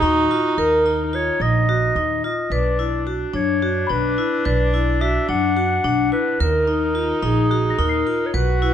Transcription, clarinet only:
0.02 0.60 F#4 medium
0.58 1.16 A#4 medium
1.15 1.43 C#5 medium
1.42 2.25 D#5 loud
2.25 2.54 D#5 medium
2.53 3.09 D5 medium
3.34 3.92 C#5 medium
3.90 4.47 B4 medium
4.45 5.03 D5 medium
5.02 5.28 E5 medium
5.29 6.08 F#5 medium
6.12 6.42 B4 medium
6.40 7.23 A#4 loud
7.24 7.80 G#4 medium
7.79 8.27 A#4 medium
8.26 8.36 C#5 soft
8.34 8.74 B4 medium

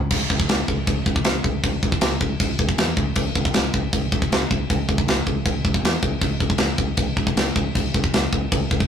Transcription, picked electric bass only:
0.11 0.23 C#2 medium
0.30 0.42 C#2 medium
0.48 0.61 C#2 medium
0.68 0.80 C#2 medium
0.88 1.00 C#2 medium
1.06 1.19 C#2 medium
1.24 1.37 C#2 medium
1.45 1.57 C#2 medium
1.64 1.76 C#2 loud
1.83 1.95 C#2 medium
2.02 2.14 C#2 medium
2.21 2.33 C#2 medium
2.40 2.52 C#2 medium
2.60 2.72 C#2 medium
2.78 2.90 E2 medium
2.98 3.10 C#2 medium
3.16 3.28 C#2 loud
3.36 3.48 C#2 medium
3.55 3.67 C#2 medium
3.74 3.86 C#2 medium
3.93 4.05 C#2 medium
4.13 4.24 C#2 medium
4.31 4.43 C#2 medium
4.51 4.63 C#2 medium
4.71 4.82 C#2 medium
4.89 5.01 C#2 medium
5.07 5.19 C#2 medium
5.27 5.39 C#2 medium
5.46 5.58 C#2 medium
5.65 5.77 C#2 medium
5.83 5.95 E2 medium
6.03 6.15 C#2 medium
6.22 6.34 C#2 loud
6.41 6.53 C#2 medium
6.58 6.71 C#2 medium
6.79 6.91 C#2 medium
6.97 7.10 C#2 medium
7.17 7.29 C#2 medium
7.36 7.48 C#2 medium
7.57 7.68 C#2 medium
7.75 7.87 C#2 medium
7.94 8.06 C#2 medium
8.13 8.25 C#2 medium
8.33 8.45 C#2 medium
8.52 8.64 C#2 medium
8.72 8.83 C#2 medium

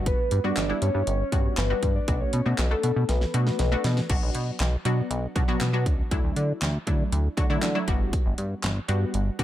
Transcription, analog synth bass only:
0.00 0.14 G1 loud
0.32 0.40 G2 loud
0.44 0.52 G2 medium
0.57 0.73 G1 loud
0.82 0.90 G2 loud
0.95 1.03 G2 loud
1.07 1.24 G1 loud
1.32 1.49 G2 loud
1.58 1.74 G1 loud
1.83 1.99 G2 loud
2.08 2.24 B1 loud
2.33 2.41 B2 loud
2.46 2.54 B2 loud
2.58 2.75 B1 loud
2.84 2.92 B2 loud
2.96 3.04 B2 loud
3.09 3.25 B1 loud
3.34 3.50 B2 loud
3.59 3.76 B1 loud
3.84 4.01 B2 loud
4.10 4.18 B1 loud
4.22 4.30 B1 loud
4.35 4.51 B2 loud
4.60 4.76 B1 loud
4.85 5.02 B2 loud
5.10 5.27 B1 loud
5.36 5.44 B2 loud
5.48 5.56 B2 loud
5.61 5.88 B2 loud
5.86 6.03 C#2 medium
6.11 6.20 D2 loud
6.24 6.32 D2 loud
6.36 6.53 D3 loud
6.62 6.78 D2 loud
6.87 7.04 D3 loud
7.12 7.28 D2 loud
7.37 7.46 D3 loud
7.50 7.58 D3 loud
7.62 7.79 D3 loud
7.88 8.12 G1 loud
8.26 8.34 G1 loud
8.38 8.54 G2 loud
8.63 8.80 G1 loud
8.89 9.05 G2 loud
9.14 9.30 G1 loud
9.39 9.44 G2 medium

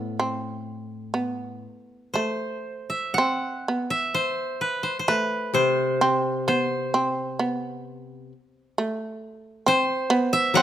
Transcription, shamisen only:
0.00 0.17 B3 medium
0.19 1.14 C4 medium
1.14 2.15 B3 medium
2.15 3.16 A3 medium
3.18 3.66 C4 medium
3.68 4.62 B3 medium
5.08 6.01 A3 medium
6.01 6.47 C4 medium
6.48 6.92 B3 medium
6.94 7.39 C4 medium
7.39 8.32 B3 medium
8.78 9.67 A3 medium
9.66 10.10 C4 medium
10.10 10.55 B3 medium
10.57 10.62 C4 loud

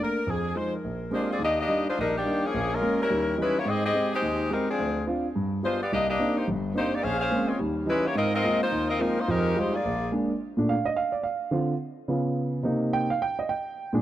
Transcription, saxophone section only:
0.03 0.29 A#4 medium
0.29 0.56 G#4 medium
0.56 0.73 C5 medium
0.73 1.29 A#4 medium
1.13 1.28 G#3 medium
1.13 1.29 D4 medium
1.13 1.29 F4 medium
1.13 1.29 C5 medium
1.31 1.40 C4 medium
1.31 1.40 F4 medium
1.31 1.40 G#4 medium
1.31 1.40 D5 medium
1.43 1.58 A#3 medium
1.43 1.58 D4 medium
1.43 1.58 G4 medium
1.43 1.58 D#5 loud
1.60 1.85 A#3 medium
1.60 1.85 D4 medium
1.60 1.85 G4 medium
1.60 1.85 D#5 loud
1.89 1.98 G#3 medium
1.89 1.98 D4 medium
1.89 1.98 F4 medium
1.89 1.98 C5 medium
1.99 2.14 G3 medium
1.99 2.14 D4 medium
1.99 2.14 D#4 medium
1.99 2.14 A#4 medium
2.17 2.44 D#3 medium
2.17 2.44 A#3 medium
2.17 2.43 D4 medium
2.17 2.43 G4 loud
2.46 2.72 F3 medium
2.46 2.72 A#3 medium
2.46 2.72 C#4 medium
2.46 2.72 G#4 medium
2.74 3.00 G#3 medium
2.74 3.00 C#4 medium
2.74 3.00 F4 medium
2.74 3.00 A#4 medium
3.02 3.36 G3 medium
3.02 3.36 C#4 medium
3.02 3.36 E4 medium
3.02 3.36 A#4 medium
3.41 3.56 G#3 medium
3.41 3.56 C#4 medium
3.41 3.56 E4 medium
3.41 3.56 B4 medium
3.58 3.67 A#3 medium
3.58 3.67 E4 medium
3.58 3.67 G4 medium
3.58 3.67 C#5 medium
3.68 3.84 C4 medium
3.68 3.84 G4 medium
3.68 3.84 G#4 medium
3.68 3.84 D#5 loud
3.85 4.10 C4 medium
3.85 4.10 G4 medium
3.85 4.10 G#4 medium
3.85 4.10 D#5 loud
4.14 4.49 G#3 medium
4.14 4.49 D#4 medium
4.14 4.49 G4 medium
4.14 4.49 C5 medium
4.52 4.68 G3 medium
4.52 4.68 C4 medium
4.52 4.68 D#4 medium
4.52 4.68 A#4 medium
4.69 5.05 F3 medium
4.69 5.05 C4 medium
4.69 5.04 D4 medium
4.69 5.04 G#4 medium
5.64 5.79 G#3 medium
5.64 5.79 D4 medium
5.64 5.79 F4 medium
5.64 5.79 C5 medium
5.82 5.91 B3 medium
5.82 5.91 F4 medium
5.82 5.91 G4 medium
5.82 5.91 D5 medium
5.93 6.08 A#3 medium
5.93 6.08 D4 medium
5.93 6.08 G4 medium
5.93 6.07 D#5 loud
6.09 6.34 A#3 medium
6.09 6.34 D4 loud
6.09 6.34 G4 medium
6.09 6.34 D#5 medium
6.37 6.47 A#3 medium
6.37 6.47 D#4 medium
6.37 6.47 G4 medium
6.37 6.47 C5 medium
6.77 6.92 A#3 medium
6.77 6.92 D#4 medium
6.77 6.92 G4 medium
6.77 6.92 C5 medium
6.94 7.03 A#3 medium
6.94 7.04 D#4 medium
6.94 7.04 G4 medium
6.94 7.03 D5 medium
7.03 7.18 C#4 medium
7.03 7.18 G#4 loud
7.03 7.19 C5 medium
7.03 7.19 F5 loud
7.19 7.46 C#4 medium
7.19 7.46 G#4 medium
7.19 7.46 C5 medium
7.19 7.46 F5 loud
7.48 7.59 G#3 medium
7.48 7.59 C4 medium
7.48 7.59 F4 medium
7.48 7.59 C#5 medium
7.89 8.04 G#3 medium
7.89 8.04 C#4 medium
7.89 8.04 E4 medium
7.89 8.04 B4 medium
8.07 8.16 A#3 medium
8.07 8.16 E4 medium
8.07 8.16 G4 medium
8.07 8.16 C#5 medium
8.17 8.32 C4 medium
8.17 8.32 F4 medium
8.17 8.32 A#4 loud
8.17 8.32 D#5 loud
8.35 8.60 C4 medium
8.35 8.60 F4 loud
8.35 8.60 A#4 medium
8.35 8.60 D#5 loud
8.62 8.87 A#3 medium
8.62 8.88 D#4 medium
8.62 8.87 F4 medium
8.62 8.87 C5 loud
8.89 8.99 C4 medium
8.89 8.99 F4 medium
8.89 8.99 A#4 medium
8.89 8.99 D#5 medium
9.00 9.17 F3 medium
9.00 9.17 C4 medium
9.00 9.17 D#4 medium
9.00 9.17 A#4 medium
9.19 9.29 A#3 medium
9.19 9.28 D#4 medium
9.19 9.29 F4 medium
9.19 9.29 C5 medium
9.29 9.56 G#3 medium
9.29 9.56 D#4 medium
9.29 9.56 G4 medium
9.29 9.56 A#4 loud
9.58 9.74 G#3 medium
9.58 9.74 D#4 medium
9.58 9.74 G4 medium
9.58 9.74 C5 medium
9.74 10.12 A#3 medium
9.74 10.12 F4 medium
9.74 10.12 G#4 medium
9.74 10.12 D5 medium

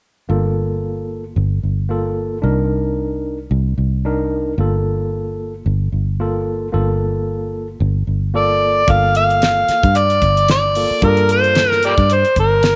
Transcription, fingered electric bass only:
0.29 1.33 G1 medium
1.36 1.62 G1 medium
1.63 2.40 G1 medium
2.43 3.47 C2 medium
3.51 3.76 C2 medium
3.78 4.55 C2 medium
4.58 5.62 G1 medium
5.66 5.91 G1 medium
5.92 6.69 G1 medium
6.74 7.77 G1 medium
7.80 8.06 G1 medium
8.07 8.84 G1 medium
8.88 9.65 G1 medium
9.68 muted fingered electric bass stroke soft
9.84 10.20 G2 medium
10.22 10.87 G1 medium
10.91 muted fingered electric bass stroke soft
11.03 11.94 G2 loud
11.98 12.23 G2 medium
12.37 12.76 G1 medium

